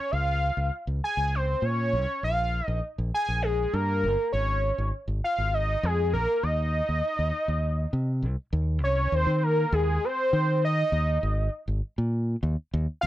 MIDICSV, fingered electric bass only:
0, 0, Header, 1, 2, 480
1, 0, Start_track
1, 0, Tempo, 600601
1, 98, Time_signature, 7, 3, 24, 8
1, 10443, End_track
2, 0, Start_track
2, 0, Title_t, "Fingered electric bass"
2, 0, Program_c, 0, 33
2, 101, Note_on_c, 0, 37, 76
2, 395, Note_off_c, 0, 37, 0
2, 455, Note_on_c, 0, 37, 73
2, 554, Note_off_c, 0, 37, 0
2, 697, Note_on_c, 0, 37, 74
2, 796, Note_off_c, 0, 37, 0
2, 935, Note_on_c, 0, 37, 64
2, 1231, Note_off_c, 0, 37, 0
2, 1295, Note_on_c, 0, 46, 72
2, 1543, Note_on_c, 0, 36, 71
2, 1555, Note_off_c, 0, 46, 0
2, 1639, Note_off_c, 0, 36, 0
2, 1783, Note_on_c, 0, 34, 70
2, 2076, Note_off_c, 0, 34, 0
2, 2140, Note_on_c, 0, 34, 74
2, 2237, Note_off_c, 0, 34, 0
2, 2385, Note_on_c, 0, 34, 78
2, 2480, Note_off_c, 0, 34, 0
2, 2625, Note_on_c, 0, 34, 66
2, 2917, Note_off_c, 0, 34, 0
2, 2985, Note_on_c, 0, 43, 79
2, 3224, Note_on_c, 0, 31, 75
2, 3236, Note_off_c, 0, 43, 0
2, 3320, Note_off_c, 0, 31, 0
2, 3463, Note_on_c, 0, 32, 82
2, 3757, Note_off_c, 0, 32, 0
2, 3822, Note_on_c, 0, 32, 73
2, 3919, Note_off_c, 0, 32, 0
2, 4057, Note_on_c, 0, 32, 77
2, 4156, Note_off_c, 0, 32, 0
2, 4302, Note_on_c, 0, 32, 72
2, 4596, Note_off_c, 0, 32, 0
2, 4662, Note_on_c, 0, 41, 85
2, 4902, Note_on_c, 0, 34, 78
2, 4914, Note_off_c, 0, 41, 0
2, 4999, Note_off_c, 0, 34, 0
2, 5141, Note_on_c, 0, 39, 78
2, 5436, Note_off_c, 0, 39, 0
2, 5504, Note_on_c, 0, 39, 70
2, 5601, Note_off_c, 0, 39, 0
2, 5744, Note_on_c, 0, 39, 70
2, 5840, Note_off_c, 0, 39, 0
2, 5979, Note_on_c, 0, 39, 68
2, 6274, Note_off_c, 0, 39, 0
2, 6337, Note_on_c, 0, 48, 82
2, 6572, Note_on_c, 0, 36, 74
2, 6584, Note_off_c, 0, 48, 0
2, 6674, Note_off_c, 0, 36, 0
2, 6814, Note_on_c, 0, 39, 92
2, 7049, Note_off_c, 0, 39, 0
2, 7049, Note_on_c, 0, 36, 73
2, 7250, Note_off_c, 0, 36, 0
2, 7289, Note_on_c, 0, 39, 81
2, 7392, Note_off_c, 0, 39, 0
2, 7406, Note_on_c, 0, 51, 68
2, 7706, Note_off_c, 0, 51, 0
2, 7772, Note_on_c, 0, 39, 94
2, 7971, Note_off_c, 0, 39, 0
2, 8255, Note_on_c, 0, 51, 74
2, 8649, Note_off_c, 0, 51, 0
2, 8727, Note_on_c, 0, 39, 81
2, 8928, Note_off_c, 0, 39, 0
2, 8974, Note_on_c, 0, 32, 85
2, 9172, Note_off_c, 0, 32, 0
2, 9331, Note_on_c, 0, 32, 77
2, 9431, Note_off_c, 0, 32, 0
2, 9575, Note_on_c, 0, 46, 76
2, 9870, Note_off_c, 0, 46, 0
2, 9932, Note_on_c, 0, 39, 87
2, 10031, Note_off_c, 0, 39, 0
2, 10178, Note_on_c, 0, 39, 97
2, 10274, Note_off_c, 0, 39, 0
2, 10415, Note_on_c, 0, 39, 73
2, 10443, Note_off_c, 0, 39, 0
2, 10443, End_track
0, 0, End_of_file